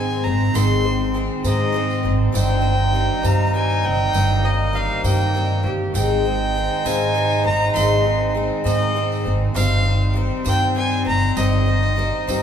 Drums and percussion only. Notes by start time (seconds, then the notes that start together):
0.10 tambourine
0.55 tambourine
1.45 tambourine
1.90 tambourine
2.35 tambourine
3.24 tambourine
3.70 tambourine
4.14 tambourine
5.04 tambourine
5.20 tambourine
5.95 tambourine
6.86 tambourine
7.31 tambourine
7.76 tambourine
8.66 tambourine
9.12 tambourine
9.56 tambourine
10.46 tambourine
10.91 tambourine
11.37 tambourine
11.53 tambourine
11.83 tambourine
11.98 tambourine
12.29 tambourine